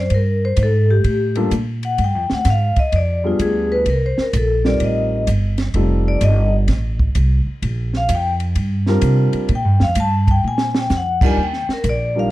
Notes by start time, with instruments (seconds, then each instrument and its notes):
0.00 vibraphone C5
0.10 upright bass G2, kick, ride
0.14 vibraphone A#4
0.45 vibraphone C5
0.57 upright bass G#2, kick, hi-hat pedal, ride
0.63 vibraphone A4
0.91 vibraphone G4
1.04 upright bass A2, kick, ride
1.35 grand piano G3 A#3 D4 F4 A4, ride
1.51 upright bass A#2, kick, hi-hat pedal, ride
1.83 vibraphone F#5, ride
1.98 upright bass G2, kick, ride
2.04 vibraphone G5
2.15 upright bass F2
2.30 upright bass D2, vibraphone F#5, snare
2.45 upright bass G#2, kick, snare, hi-hat pedal, ride
2.50 vibraphone F5
2.76 vibraphone D#5, muted upright bass stroke, kick, ride
2.92 upright bass F2, vibraphone D5, kick, ride
3.24 grand piano G3 B3 D4 F4 G#4, vibraphone F4
3.39 upright bass D2, vibraphone G#4, kick, hi-hat pedal, ride
3.72 vibraphone B4
3.86 upright bass C2, kick, ride
3.90 vibraphone A#4
4.06 vibraphone C5
4.18 muted upright bass stroke, snare
4.22 vibraphone A#4
4.33 upright bass A#1, vibraphone A4, kick, hi-hat pedal, ride
4.64 grand piano G3 C4 D#4 F4 A#4, vibraphone D5, snare
4.80 upright bass A1, kick, ride
4.84 vibraphone D#5
5.27 upright bass G1, kick, hi-hat pedal, ride
5.58 snare, ride
5.74 upright bass F1, grand piano G3 C4 D#4 F4 A4, kick, ride
6.08 vibraphone D5
6.21 upright bass G1, vibraphone D#5, kick, hi-hat pedal, ride
6.68 upright bass A1, kick, snare, ride
6.99 kick
7.15 upright bass C2, kick, hi-hat pedal, ride
7.46 muted upright bass stroke
7.62 upright bass A#1, kick, ride
7.94 vibraphone F5, snare
8.09 upright bass F2, kick, hi-hat pedal, ride
8.15 vibraphone G5
8.40 ride
8.55 upright bass G2, kick, ride
8.86 grand piano G3 C4 D4 F4 A#4, snare
9.01 upright bass C3, kick, hi-hat pedal, ride
9.33 muted upright bass stroke, ride
9.49 upright bass A#2, kick, ride
9.55 vibraphone G5
9.64 upright bass G2
9.80 upright bass F2, vibraphone F5, snare
9.95 upright bass G2, kick, hi-hat pedal, ride
10.00 vibraphone A5
10.28 vibraphone G5, kick, ride
10.44 upright bass A#2, vibraphone G#5
10.58 snare
10.75 snare
10.79 vibraphone G5
10.90 upright bass F2, snare, hi-hat pedal
10.97 vibraphone F#5
11.21 grand piano G3 D4 D#4 F4 A#4, kick, crash
11.26 vibraphone G#5
11.37 upright bass D#2, kick
11.43 vibraphone G5
11.53 snare
11.68 muted upright bass stroke, snare
11.73 vibraphone A#4
11.84 upright bass A#1, kick, hi-hat pedal, ride
11.89 vibraphone D5
12.15 grand piano G3 D4 D#4 F4 A#4, vibraphone F5